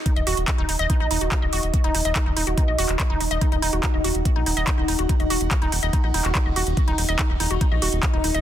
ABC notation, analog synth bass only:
X:1
M:4/4
L:1/16
Q:1/4=143
K:Ebm
V:1 name="Analog synth bass" clef=bass
z E,,, E,,, E,,, z E,,, E,,, E,,, z B,,, E,,, E,,, z E,,, E,,, E,,, | z E,,, E,,, E,,, z E,,, E,,, E,,, z B,,, E,,, E,,, z E,,, E,,, E,,, | z E,,, E,,, E,,, z E,,, E,,, E,,, z B,,, E,,, E,,, z E,,, E,,, E,,, | z E,,, E,,, E,,, z E,,, E,,, E,,, z B,,, E,,, E,,, z E,,, E,,, E,,, |
z E,,, E,,, E,,, z E,,, E,,, E,,, z B,,, E,,, E,,, z E,,, E,,, E,,, |]